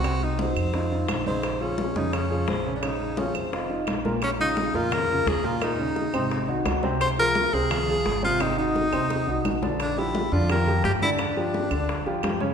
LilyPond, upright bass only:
\new Staff \with { instrumentName = "Upright bass" } { \clef bass \time 4/4 \key bes \minor \tempo 4 = 172 c,4. f,4. bes,,4~ | bes,,4. f,4. bes,,4~ | bes,,4. f,,4. bes,,4~ | bes,,4. f,4. ees,4~ |
ees,4. aes,,4 c,8 des,4~ | des,4. des,4. aes,,4~ | aes,,4. ees,4 c,8 bes,,4~ | bes,,4. f,4. g,4~ |
g,4. d,4 e,8 ges,4 | }